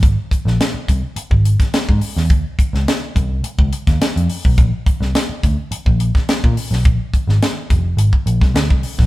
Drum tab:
HH |x-x-x-x-x-xxx-o-|x-x-x-x-x-xxxxo-|x-x-x-x-x-x-x-o-|x-x-x-x-x-x-x-o-|
SD |---oo------oo--o|---oo------oo---|---oo------oo--o|---oo------oo--o|
BD |o-o---o--o-o-o--|o-o---o--o-o---o|o-o---o--o-o-o--|o-o---o--o-o-o-o|